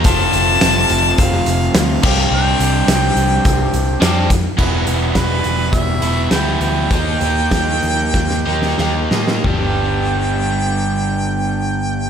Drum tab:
CC |--------------x-|----------------|x---------------|----------------|
HH |x-x-x-x-x-x-x---|--x-x-x-x-x-x-x-|--x-x-x-x-x-x-x-|x-x-x-x---------|
SD |----o----o--o---|----o-------o---|----o-------o---|----o---oo-oo-oo|
FT |----------------|----------------|----------------|----------------|
BD |o-------o-----o-|--------o-----o-|o---o---o-------|o---o---o-------|

CC |----------------|
HH |----------------|
SD |----------------|
FT |o---------------|
BD |o---------------|